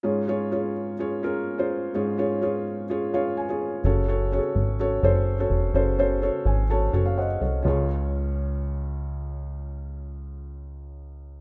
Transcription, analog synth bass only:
\new Staff \with { instrumentName = "Analog synth bass" } { \clef bass \time 4/4 \key des \major \tempo 4 = 126 r1 | r1 | ges,,4~ ges,,16 r16 aes,,4 ges,,4 f,,8 | ges,,4~ ges,,16 r16 aes,,4 ges,,4 c,8 |
des,1~ | des,1 | }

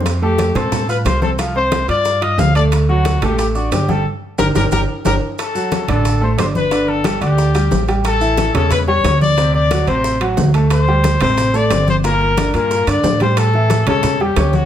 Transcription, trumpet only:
\new Staff \with { instrumentName = "Trumpet" } { \time 4/4 \key d \phrygian \tempo 4 = 180 r8 g'4 a'4 b'8 c''8 a'8 | r8 c''4 d''4 ees''8 f''8 d''8 | r8 fis'4 g'8 g'8 fis'8 g'8 a'8 | r4 bes'8 bes'8 bes'8 r8 bes'8 r8 |
a'4. a'4 c''8 c''8 b'8~ | b'8 a'4 g'2 r8 | a'4. a'8 b'8 cis''4 d''8~ | d''8 d''4 c''4 r4. |
c''4. c''4 d''4 c''8 | bes'4. bes'4 d''4 c''8 | a'4. a'4 g'4 fis'8 | }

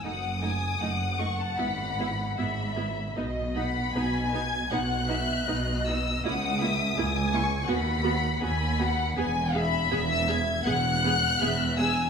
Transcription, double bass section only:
\new Staff \with { instrumentName = "Double bass section" } { \clef bass \time 4/4 \key e \major \tempo 4 = 79 fis,,4 fis,,4 gis,,4 gis,,4 | b,,4 b,,4 b,,4 b,,4 | cis,4 cis,4 dis,4 dis,4 | e,,4 e,,4 e,,4 e,,4 | }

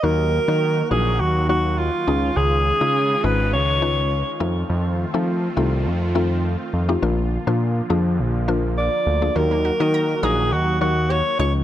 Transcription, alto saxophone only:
\new Staff \with { instrumentName = "Alto saxophone" } { \time 4/4 \key ees \minor \tempo 4 = 103 bes'4. aes'8 ges'8 ges'8 f'4 | aes'4. ces''8 des''4. r8 | r1 | r2. d''4 |
bes'4. aes'8 ges'8 ges'8 des''8 des''8 | }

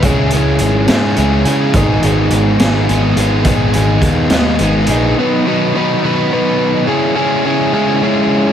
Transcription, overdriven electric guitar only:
\new Staff \with { instrumentName = "Overdriven electric guitar" } { \time 6/8 \key cis \minor \tempo 4. = 70 <cis gis cis' e' gis'>8 <cis' e' gis'>4 <cis gis cis' e' gis'>8 <gis cis' e' gis'>8 <cis' e' gis'>8 | <gis, dis gis b dis' gis'>8 <gis b dis' gis'>4 <gis, dis gis b dis' gis'>8 <gis b dis' gis'>8 <gis b dis' gis'>8 | <gis, dis gis b dis' gis'>8 <gis b dis' gis'>4 <gis, dis gis b dis' gis'>8 <gis b dis' gis'>8 <gis b dis' gis'>8 | <b, dis fis b dis' b'>8 <b, dis fis b dis' b'>8 <b, dis fis b dis' b'>8 <b, dis fis b dis' b'>8 <b, dis fis b dis' b'>4 |
<cis gis cis' e' gis'>8 <cis gis cis' e' gis'>8 <cis gis cis' e' gis'>8 <cis gis cis' e' gis'>8 <cis gis cis' e' gis'>4 | }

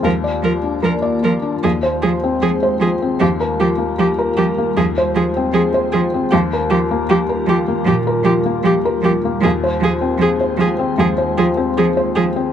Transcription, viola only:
\new Staff \with { instrumentName = "Viola" } { \time 4/4 \key ees \major \tempo 4 = 77 bes'8 bes'8 bes'8 bes'8 aes'8 aes'8 aes'8 aes'8 | g'8 g'8 g'8 g'8 aes'8 aes'8 aes'8 aes'8 | g'8 g'8 g'8 g'8 g'8 g'8 g'8 g'8 | aes'8 aes'8 aes'8 aes'8 aes'8 aes'8 aes'8 aes'8 | }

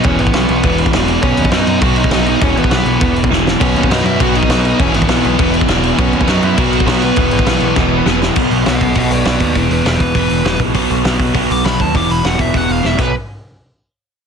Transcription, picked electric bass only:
\new Staff \with { instrumentName = "Picked electric bass" } { \clef bass \time 4/4 \key b \major \tempo 4 = 202 e,,8 gis,,8 b,,8 b,,8 e,,4 e,,4 | b,,8 dis,8 fis,8 fis,8 b,,4 b,,4 | e,,8 gis,,8 b,,8 b,,8 e,,4 e,,4 | b,,8 dis,8 fis,8 fis,8 b,,4 b,,4 |
e,,8 gis,,8 b,,8 b,,8 e,,4 e,,4 | b,,8 dis,8 fis,8 fis,8 b,,4 b,,4 | e,,8 gis,,8 b,,8 b,,8 e,,4 e,,4 | b,,8 b,,8 b,,8 b,,8 b,,8 b,,8 b,,8 dis,8 |
e,,8 e,,8 e,,8 e,,8 e,,8 e,,8 e,,8 ais,,8 | b,,8 b,,8 b,,8 b,,8 b,,8 b,,8 b,,8 dis,8 | e,,8 e,,8 e,,8 e,,8 e,,8 e,,8 e,,8 b,,8 | r1 | }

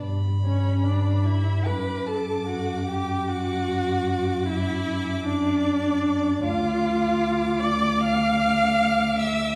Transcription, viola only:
\new Staff \with { instrumentName = "Viola" } { \time 4/4 \key d \major \tempo 4 = 76 r8 cis'8 d'8 e'8 b'8 a'8 fis'8 g'8 | fis'4. e'4 d'4. | \key d \minor f'4. d''8 f''4. e''8 | }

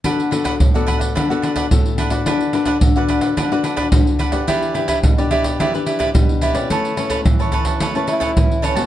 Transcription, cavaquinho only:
\new Staff \with { instrumentName = "Cavaquinho" } { \time 4/4 \key d \major \tempo 4 = 108 <d' b' d'' fis''>8 <d' b' d'' fis''>16 <d' b' d'' fis''>16 r16 <b' d'' fis''>16 <d' b' d'' fis''>16 <b' d'' fis''>16 <d' b' d'' fis''>16 <b' d'' fis''>16 <d' b' d'' fis''>16 <d' b' d'' fis''>16 r8 <d' b' d'' fis''>16 <b' d'' fis''>16 | <d' b' d'' fis''>8 <d' b' d'' fis''>16 <d' b' d'' fis''>16 r16 <b' d'' fis''>16 <d' b' d'' fis''>16 <b' d'' fis''>16 <d' b' d'' fis''>16 <b' d'' fis''>16 <d' b' d'' fis''>16 <d' b' d'' fis''>16 r8 <d' b' d'' fis''>16 <b' d'' fis''>16 | <e' g' b' d''>8 <e' g' b' d''>16 <e' g' b' d''>16 r16 <g' b' d''>16 <e' g' b' d''>16 <g' b' d''>16 <e' g' b' d''>16 <g' b'>16 <e' g' b' d''>16 <e' g' b' d''>16 r8 <e' g' b' d''>16 <g' b' d''>16 | <a' b' cis'' a''>8 <a' b' cis'' a''>16 <a' b' cis'' a''>16 r16 <b' cis'' a''>16 <a' b' cis'' a''>16 <b' cis'' a''>16 <a' b' cis'' a''>16 <b' cis'' a''>16 <a' b' cis'' a''>16 <a' b' cis'' a''>16 r8 <a' b' cis'' a''>16 <b' cis'' a''>16 | }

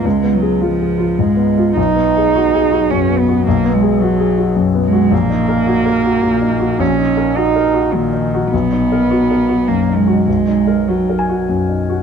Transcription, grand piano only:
\new Staff \with { instrumentName = "Grand piano" } { \time 3/4 \key ees \minor \tempo 4 = 106 << { r2. | r2. | r2. | r2. |
r2. | r2. | r4. aes''4. | } \\ { \tuplet 3/2 { <des, f'>8 ces'8 aes'8 f'8 aes'8 f'8 aes,8 ces'8 f'8 } | \tuplet 3/2 { ces,8 ces'8 aes'8 ges'8 aes'8 ges'8 ges,8 ces'8 ges'8 } | \tuplet 3/2 { ces,8 ces'8 aes'8 ges'8 aes'8 ges'8 ges,8 ces'8 ges'8 } | \tuplet 3/2 { bes,,8 ees'8 bes'8 ges'8 bes'8 ges'8 bes,8 ees'8 ges'8 } |
\tuplet 3/2 { bes,,8 ees'8 bes'8 ges'8 bes'8 ges'8 bes,8 ees'8 ges'8 } | \tuplet 3/2 { b,,8 dis'8 ais'8 fis'8 ais'8 fis'8 fis,8 dis'8 fis'8 } | \tuplet 3/2 { b,,8 dis'8 ais'8 fis'8 ais'8 fis'8 fis,8 dis'8 fis'8 } | } >> }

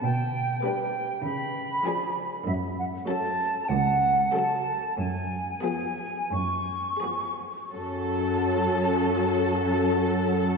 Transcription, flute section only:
\new Staff \with { instrumentName = "Flute section" } { \time 4/4 \key fis \minor \tempo 4 = 92 g''4 g''4 b''4. r8 | e''8 fis''8 a''4 fis''4 a''4 | gis''4 gis''4 cis'''4. r8 | a''1 | }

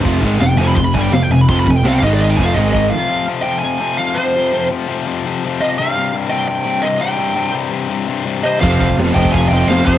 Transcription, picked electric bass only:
\new Staff \with { instrumentName = "Picked electric bass" } { \clef bass \time 4/4 \key f \dorian \tempo 4 = 168 f,,8 aes,,8 f,,8 f,,8 f,,8 g,,8 f,,8 f,,8 | f,,8 f,,8 c,8 aes,,4 f,,8 aes,,4 | r1 | r1 |
r1 | r1 | f,,8 f,,8 f,,8 f,,8 f,,8 f,,8 f,,8 f,,8 | }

